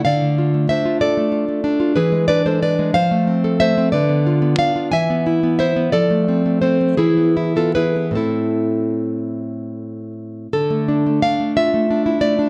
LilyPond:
\new Staff \with { instrumentName = "Nylon-string guitar" } { \time 6/8 \key a \minor \tempo 4. = 60 << { <d'' f''>4 <c'' e''>8 <a' d''>4. | <gis' b'>8 <b' d''>16 <a' c''>16 <b' d''>8 <c'' f''>4 <c'' e''>8 | <b' d''>4 <d'' f''>8 <e'' gis''>4 <c'' e''>8 | <a' d''>4 <a' c''>8 <e' gis'>8. <f' a'>16 <gis' b'>8 |
<e' a'>2~ <e' a'>8 r8 | \key d \minor a'4 f''8 e''4 d''8 | } \\ { d16 a16 f'16 a16 d'16 f'8 a16 f'16 a16 d'16 f'16 | e16 gis16 d'16 gis16 d'16 gis16 f16 a16 c'16 a'16 a16 c'16 | d16 b16 f'16 b16 d'16 f'16 e16 b16 e'16 b16 e'16 b16 | f16 a16 c'16 a16 c'16 a16 e16 b16 e'16 b16 e'16 b16 |
<a, c'>2. | d16 a16 d'16 a16 d'16 a16 f'16 a16 d'16 e'16 a16 d'16 | } >> }